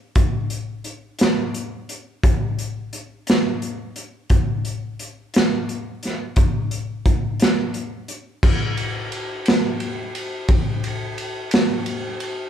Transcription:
0.15 kick medium
0.15 closed hi-hat medium
0.50 closed hi-hat medium
0.84 closed hi-hat medium
1.19 snare loud
1.19 closed hi-hat medium
1.54 closed hi-hat medium
1.89 closed hi-hat medium
2.23 kick loud
2.23 closed hi-hat medium
2.59 closed hi-hat medium
2.93 closed hi-hat medium
3.27 snare loud
3.27 closed hi-hat medium
3.62 closed hi-hat soft
3.96 closed hi-hat medium
4.30 kick medium
4.30 closed hi-hat medium
4.65 closed hi-hat soft
4.99 closed hi-hat medium
5.34 snare loud
5.34 closed hi-hat medium
5.69 closed hi-hat soft
6.03 snare soft
6.03 closed hi-hat medium
6.36 kick loud
6.36 closed hi-hat medium
6.71 closed hi-hat medium
7.06 kick medium
7.06 closed hi-hat medium
7.40 snare loud
7.40 closed hi-hat medium
7.74 closed hi-hat medium
8.08 closed hi-hat medium
8.43 kick loud
8.43 crash loud
8.77 ride medium
9.12 ride medium
9.46 snare loud
9.46 ride medium
9.80 ride medium
10.15 ride medium
10.48 kick loud
10.48 ride medium
10.84 ride medium
11.18 ride medium
11.51 snare loud
11.51 ride medium
11.86 ride medium
12.20 ride medium

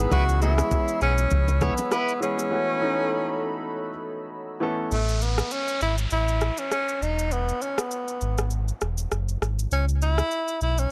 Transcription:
0.00 0.10 E3 medium
0.00 0.13 G3 medium
0.00 0.11 G#3 medium
0.00 0.12 B3 medium
0.00 0.13 D#4 medium
0.00 0.13 F#4 medium
0.00 0.13 G#4 medium
0.00 2.48 G#4 medium
0.00 2.47 B5 medium
0.00 4.87 E6 medium
0.10 0.62 C#2 loud
0.10 0.38 E3 medium
0.10 0.38 G#3 medium
0.10 0.39 B3 medium
0.10 0.39 C#4 medium
0.10 0.23 E4 medium
0.10 0.40 F#4 loud
0.10 0.39 G#4 medium
0.10 0.23 B4 loud
0.10 4.87 C#5 medium
0.10 kick loud
0.10 low conga medium
0.10 shaker medium
0.29 shaker medium
0.40 1.49 E3 medium
0.40 1.49 G#3 medium
0.40 0.53 A3 medium
0.40 1.49 B3 medium
0.40 1.50 C#4 medium
0.40 0.98 E4 loud
0.40 0.53 F#4 medium
0.40 1.50 G#4 medium
0.40 low bongo medium
0.40 shaker medium
0.58 cross-stick loud
0.58 low bongo medium
0.58 shaker medium
0.71 kick loud
0.71 high bongo medium
0.71 shaker medium
0.88 shaker medium
1.01 1.27 B1 medium
1.01 1.13 B3 medium
1.01 1.64 C#4 loud
1.01 1.13 G#4 medium
1.01 shaker medium
1.18 high bongo soft
1.18 shaker loud
1.31 1.71 C#2 loud
1.31 kick medium
1.31 low conga medium
1.31 shaker medium
1.48 low bongo medium
1.48 shaker medium
1.61 1.92 B3 medium
1.61 1.73 E4 medium
1.61 1.73 C#5 medium
1.61 kick medium
1.61 cross-stick loud
1.61 low conga medium
1.61 shaker medium
1.78 low bongo medium
1.78 shaker medium
1.91 2.20 B3 loud
1.91 2.12 E4 medium
1.91 2.12 B4 medium
1.91 cross-stick medium
1.91 high bongo medium
1.91 shaker medium
2.08 shaker medium
2.20 2.48 E3 medium
2.20 2.48 G#3 medium
2.20 2.48 B3 medium
2.20 2.49 C#4 medium
2.20 3.98 C#4 loud
2.20 2.49 G#4 medium
2.20 shaker medium
2.38 high bongo medium
2.38 shaker loud
2.50 2.78 E3 medium
2.50 2.78 A3 medium
2.50 2.79 B3 medium
2.50 2.79 C#4 medium
2.50 2.79 F#4 medium
2.50 4.89 A4 medium
2.50 4.89 B5 medium
2.80 3.89 E3 medium
2.80 3.89 A3 medium
2.80 3.89 B3 medium
2.80 3.90 C#4 medium
2.80 3.90 D#4 medium
4.60 4.88 E3 medium
4.60 4.88 A3 medium
4.60 4.88 B3 medium
4.60 4.89 C#4 medium
4.60 4.89 A4 medium
4.91 5.42 A1 loud
4.91 5.24 A3 loud
4.91 downlifter medium
4.91 shaker medium
5.09 shaker medium
5.22 5.54 B3 medium
5.22 shaker medium
5.38 cross-stick loud
5.38 shaker medium
5.51 5.82 C#4 loud
5.51 shaker medium
5.68 shaker medium
5.81 6.07 G#1 medium
5.81 5.96 E4 loud
5.81 shaker medium
5.98 shaker loud
6.11 6.51 A1 loud
6.11 6.60 E4 loud
6.11 shaker medium
6.28 shaker medium
6.41 cross-stick loud
6.41 shaker medium
6.58 6.72 C#4 medium
6.58 shaker medium
6.72 7.04 C#4 loud
6.72 cross-stick medium
6.72 shaker medium
6.88 shaker soft
7.01 7.52 E1 loud
7.01 7.34 D#4 loud
7.01 shaker soft
7.19 shaker medium
7.31 7.64 B3 loud
7.31 shaker medium
7.49 shaker medium
7.62 7.80 C#4 medium
7.62 shaker medium
7.78 8.69 B3 medium
7.78 cross-stick loud
7.78 shaker medium
7.91 shaker medium
8.08 shaker medium
8.21 8.72 G#1 medium
8.21 shaker medium
8.38 cross-stick loud
8.38 shaker loud
8.50 shaker medium
8.68 shaker medium
8.81 9.07 E1 medium
8.81 cross-stick medium
8.81 shaker medium
8.98 shaker medium
9.11 9.37 F#1 medium
9.11 cross-stick medium
9.11 shaker medium
9.28 shaker soft
9.41 9.67 G#1 loud
9.41 cross-stick loud
9.41 shaker soft
9.59 shaker medium
9.71 10.22 C#2 loud
9.71 9.86 C#4 loud
9.71 shaker medium
9.89 shaker medium
10.02 10.58 E4 loud
10.02 shaker medium
10.18 cross-stick loud
10.18 shaker medium
10.31 shaker medium
10.48 shaker medium
10.61 10.87 B1 medium
10.61 10.80 E4 loud
10.61 shaker medium
10.78 10.91 C#4 loud
10.78 shaker medium

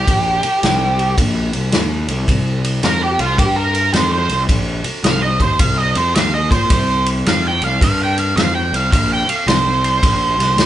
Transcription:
0.00 1.15 G4 loud
0.07 0.40 A#1 loud
0.07 kick loud
0.07 ride medium
0.43 muted picked electric bass stroke soft
0.43 ride medium
0.63 1.14 C2 medium
0.63 snare loud
0.63 ride medium
0.99 ride medium
1.17 1.50 A#1 medium
1.17 kick loud
1.17 ride loud
1.53 1.71 C2 medium
1.53 ride medium
1.72 2.05 D#2 medium
1.72 snare loud
1.72 ride medium
2.08 2.27 C2 medium
2.08 ride medium
2.28 2.79 C2 loud
2.28 kick loud
2.28 ride medium
2.64 ride medium
2.83 3.16 F2 medium
2.83 3.02 A#4 medium
2.83 snare medium
2.83 ride medium
3.02 3.20 G4 medium
3.19 3.37 C2 medium
3.19 3.38 F4 medium
3.19 ride medium
3.38 3.90 G2 medium
3.38 3.57 G4 medium
3.38 kick loud
3.38 ride loud
3.56 3.92 A#4 medium
3.75 ride medium
3.93 4.27 F2 medium
3.93 4.11 C5 medium
3.93 snare medium
3.93 ride medium
4.12 4.42 C5 medium
4.29 4.47 C2 medium
4.29 ride medium
4.49 4.82 A#1 loud
4.49 kick loud
4.49 ride medium
4.84 muted picked electric bass stroke soft
4.84 ride medium
5.04 5.37 C2 medium
5.04 5.22 F5 loud
5.04 snare loud
5.04 ride medium
5.22 5.41 D#5 medium
5.40 5.58 D#2 medium
5.40 5.59 C5 medium
5.40 kick medium
5.40 ride medium
5.59 5.93 C2 medium
5.59 5.78 F5 medium
5.59 kick loud
5.59 ride loud
5.78 5.96 D#5 medium
5.95 6.14 F2 medium
5.95 6.15 C5 medium
5.95 ride medium
6.15 6.49 D#2 medium
6.15 6.33 F5 medium
6.15 snare loud
6.15 ride medium
6.34 6.51 D#5 medium
6.51 6.69 A#2 medium
6.51 6.70 C5 medium
6.51 kick loud
6.51 ride medium
6.70 7.22 C2 medium
6.70 7.06 C5 loud
6.70 kick loud
6.70 ride medium
7.06 ride medium
7.26 7.59 F2 medium
7.26 7.47 F5 loud
7.26 snare medium
7.26 ride medium
7.47 7.64 G5 medium
7.61 7.80 C2 medium
7.61 7.81 F5 medium
7.61 ride medium
7.81 8.33 G2 medium
7.81 8.01 F5 medium
7.81 kick loud
7.81 ride loud
8.03 8.19 G5 medium
8.18 8.35 F5 medium
8.18 ride medium
8.36 8.70 F2 medium
8.36 8.55 F5 loud
8.36 snare loud
8.36 ride medium
8.55 8.76 G5 medium
8.72 8.90 C2 medium
8.72 8.90 F5 medium
8.72 ride medium
8.92 9.25 A#1 medium
8.92 9.12 F5 loud
8.92 kick loud
8.92 ride medium
9.12 9.29 G5 medium
9.27 9.47 F5 medium
9.27 muted picked electric bass stroke soft
9.27 ride medium
9.47 9.98 C2 medium
9.47 10.66 C5 medium
9.47 snare loud
9.47 ride medium
9.84 ride medium
10.03 10.36 A#1 medium
10.03 kick loud
10.03 ride loud
10.37 10.55 C2 medium
10.37 ride medium
10.41 snare soft
10.56 10.66 D#2 medium
10.56 snare loud
10.56 ride medium

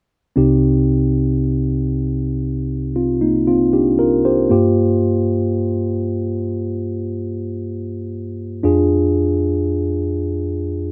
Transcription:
0.36 4.47 C2 soft
0.36 4.47 C3 soft
0.36 2.91 C4 soft
0.36 2.91 D#4 soft
0.36 2.92 G4 medium
2.96 3.20 C4 soft
2.96 3.20 F4 soft
3.21 3.46 A#3 soft
3.21 3.46 D#4 soft
3.48 3.72 C4 soft
3.48 3.72 F4 medium
3.73 3.98 D4 soft
3.73 3.98 G4 soft
3.99 4.24 F4 soft
3.99 4.23 A#4 soft
4.25 4.50 G4 soft
4.25 4.74 C5 soft
4.50 8.60 G2 soft
4.50 8.60 A#3 soft
4.50 8.61 F4 soft
4.50 8.61 G4 medium
8.63 10.92 F2 medium
8.63 10.92 D4 medium
8.63 10.92 F4 medium
8.63 10.92 G#4 medium

